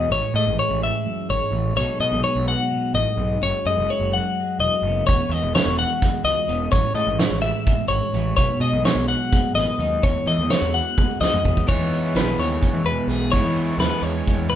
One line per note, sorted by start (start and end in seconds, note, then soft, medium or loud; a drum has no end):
0.00 0.12 E2 medium
0.00 0.11 B2 medium
0.00 0.80 E3 medium
0.00 0.36 G#3 medium
0.00 1.80 C#4 medium
0.00 0.12 D#5 medium
0.10 0.20 A1 medium
0.10 1.06 A2 medium
0.10 0.35 C#5 medium
0.34 0.48 A2 medium
0.34 1.79 G#3 medium
0.34 0.59 D#5 medium
0.47 0.56 A1 medium
0.59 1.80 G#4 medium
0.59 0.83 C#5 medium
0.70 0.88 A1 medium
0.81 1.76 E3 medium
0.81 1.30 E5 medium
1.06 1.30 F#2 medium
1.30 1.39 G#1 medium
1.30 1.53 G#2 medium
1.30 1.76 C#5 medium
1.52 1.71 A1 medium
1.52 1.77 A2 medium
1.76 1.85 B1 medium
1.76 2.70 B2 medium
1.76 2.47 F#3 medium
1.76 2.00 C#5 medium
1.80 2.01 G#3 medium
1.80 3.41 D#4 medium
1.80 2.25 A4 medium
2.00 2.14 B2 medium
2.00 3.67 G#3 medium
2.00 2.23 D#5 medium
2.12 2.21 B1 medium
2.24 3.44 G#4 medium
2.24 2.48 C#5 medium
2.35 2.54 B1 medium
2.48 3.71 F#3 medium
2.48 2.94 F#5 medium
2.71 2.95 B2 medium
2.94 3.04 A1 medium
2.94 3.18 A2 medium
2.94 3.42 D#5 medium
3.17 3.36 B1 medium
3.17 3.41 G#2 medium
3.41 3.51 F#1 medium
3.41 5.04 F#2 medium
3.41 3.66 C#5 medium
3.66 3.78 F#2 medium
3.66 4.40 G#3 medium
3.66 3.90 D#5 medium
3.77 3.86 F#1 medium
3.89 4.02 E4 medium
3.89 4.13 C#5 medium
4.00 4.18 F#1 medium
4.00 4.61 F#4 medium
4.13 5.05 F#3 medium
4.13 4.60 F#5 medium
4.40 5.34 G#3 medium
4.59 4.69 E1 medium
4.59 5.06 F#4 medium
4.59 5.06 D#5 medium
4.82 5.01 F#1 medium
4.82 5.06 C#3 medium
4.87 6.49 B3 medium
5.07 5.17 E1 medium
5.07 6.72 E2 medium
5.07 5.32 C#5 medium
5.07 kick loud
5.07 closed hi-hat medium
5.29 5.44 E2 medium
5.29 5.55 D#5 medium
5.29 closed hi-hat medium
5.34 6.04 G#3 medium
5.43 5.52 E1 medium
5.55 5.68 E4 medium
5.55 5.78 C#5 medium
5.55 snare loud
5.55 closed hi-hat medium
5.66 5.84 E1 medium
5.66 6.25 F#4 medium
5.78 7.41 E3 medium
5.78 6.24 F#5 medium
5.78 closed hi-hat medium
6.02 6.96 G#3 medium
6.02 kick medium
6.02 snare soft
6.02 closed hi-hat loud
6.24 6.34 C#2 medium
6.24 6.70 F#4 medium
6.24 6.71 D#5 medium
6.24 closed hi-hat medium
6.48 6.67 E1 medium
6.48 6.72 B2 medium
6.48 8.15 C#4 medium
6.48 closed hi-hat medium
6.72 6.82 A1 medium
6.72 8.35 A2 medium
6.72 6.95 C#5 medium
6.72 kick loud
6.72 closed hi-hat medium
6.94 7.08 A2 medium
6.94 7.66 G#3 medium
6.94 7.19 D#5 medium
6.94 closed hi-hat medium
7.07 7.16 A1 medium
7.19 7.89 G#4 medium
7.19 7.41 C#5 medium
7.19 snare loud
7.19 closed hi-hat medium
7.30 7.49 A1 medium
7.42 8.13 E3 medium
7.42 7.88 E5 medium
7.42 closed hi-hat medium
7.66 8.62 G#3 medium
7.66 kick loud
7.66 closed hi-hat medium
7.88 7.99 G#1 medium
7.88 8.02 E4 medium
7.88 8.35 C#5 medium
7.88 closed hi-hat medium
8.02 8.38 F#4 soft
8.14 8.32 A1 medium
8.14 8.35 E3 medium
8.14 8.40 C#4 soft
8.14 closed hi-hat medium
8.37 8.46 B1 medium
8.37 9.79 B2 medium
8.37 8.61 C#5 loud
8.37 kick loud
8.37 closed hi-hat medium
8.60 8.74 B2 medium
8.60 9.33 G#3 medium
8.60 8.85 D#5 medium
8.60 closed hi-hat medium
8.72 8.82 B1 medium
8.85 9.57 G#4 medium
8.85 9.08 C#5 medium
8.85 snare loud
8.85 closed hi-hat medium
8.95 9.14 B1 medium
9.08 10.00 F#3 medium
9.08 9.55 F#5 medium
9.08 closed hi-hat medium
9.33 10.26 G#3 medium
9.33 kick loud
9.33 snare soft
9.33 closed hi-hat medium
9.54 9.64 A1 medium
9.54 10.52 B4 medium
9.54 10.03 D#5 medium
9.54 snare soft
9.54 closed hi-hat medium
9.79 9.97 D#2 medium
9.79 10.01 F#2 medium
9.79 10.01 D#4 medium
9.79 closed hi-hat medium
10.03 10.12 E2 medium
10.03 11.67 E2 medium
10.03 10.27 C#5 loud
10.03 kick loud
10.03 closed hi-hat medium
10.26 10.40 E3 medium
10.26 10.96 G#3 medium
10.26 10.50 D#5 medium
10.26 closed hi-hat medium
10.38 10.47 E2 medium
10.50 11.22 F#4 medium
10.50 10.74 C#5 medium
10.50 snare medium
10.50 closed hi-hat loud
10.62 10.80 E2 medium
10.74 12.14 E3 medium
10.74 11.21 F#5 medium
10.74 closed hi-hat medium
10.97 11.68 G#3 medium
10.97 kick loud
10.97 high tom medium
11.20 11.30 C#2 medium
11.20 11.66 F#4 medium
11.20 11.68 D#5 medium
11.20 snare medium
11.33 mid tom medium
11.44 11.63 E2 medium
11.44 11.68 B2 medium
11.44 11.66 C#4 medium
11.44 kick medium
11.57 kick medium
11.67 11.77 E2 medium
11.67 13.32 E2 medium
11.67 13.32 E3 medium
11.67 13.33 G#3 medium
11.67 12.41 G#3 medium
11.67 13.33 B3 medium
11.67 12.18 D#4 medium
11.67 13.35 E4 medium
11.67 13.35 G#4 medium
11.67 12.16 C#5 medium
11.67 kick loud
11.67 closed hi-hat medium
11.79 12.17 E3 medium
11.93 closed hi-hat medium
12.15 12.33 B1 medium
12.15 13.81 E3 medium
12.15 12.40 B4 medium
12.15 snare medium
12.15 closed hi-hat medium
12.38 12.56 D#2 medium
12.38 13.34 G#3 medium
12.38 12.86 C#5 medium
12.38 snare soft
12.38 closed hi-hat soft
12.62 kick loud
12.62 closed hi-hat medium
12.73 12.83 E3 medium
12.84 12.94 E2 medium
12.84 13.34 B2 medium
12.84 13.08 B4 medium
12.84 closed hi-hat soft
13.07 13.34 B1 medium
13.07 13.33 G#4 medium
13.07 snare soft
13.07 closed hi-hat soft
13.32 14.55 E2 medium
13.32 13.42 G#2 medium
13.32 14.55 E3 medium
13.32 14.55 G#3 medium
13.32 14.05 G#3 medium
13.32 14.55 B3 medium
13.32 13.58 D#4 medium
13.32 14.55 E4 medium
13.32 14.55 G#4 medium
13.32 13.80 C#5 medium
13.32 kick loud
13.32 closed hi-hat medium
13.43 13.71 E3 medium
13.57 closed hi-hat medium
13.78 13.88 D#2 loud
13.78 14.55 E3 medium
13.78 14.03 B4 medium
13.78 snare medium
13.78 closed hi-hat medium
14.02 14.21 E2 medium
14.02 14.55 G#3 medium
14.02 14.49 C#5 medium
14.02 closed hi-hat soft
14.27 kick medium
14.27 closed hi-hat medium
14.38 14.55 E2 medium
14.50 14.55 B2 medium
14.50 14.55 B4 medium
14.50 closed hi-hat soft